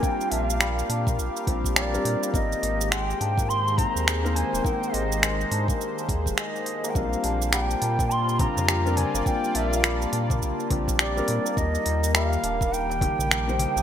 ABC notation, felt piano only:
X:1
M:4/4
L:1/16
Q:"Swing 16ths" 1/4=104
K:Bbmix
V:1 name="Felt piano"
[G,CDF]8- [G,CDF]2 [G,CDF]3 [G,CDB] z2 | [E,B,CG]8- [E,B,CG]2 [E,B,Cg]3 [B,CEB] z2 | [E,B,Cg]8- [E,B,Cg]2 z6 | [G,CDF]8- [G,CDF]2 [G,CDF]3 [G,CDB] z2 |
[G,CDF]8- [G,CDF]2 [G,CDF]3 [G,CDB] z2 | [E,G,B,G]8- [E,G,B,G]2 [E,G,B,G]3 [G,B,Ec] z2 |]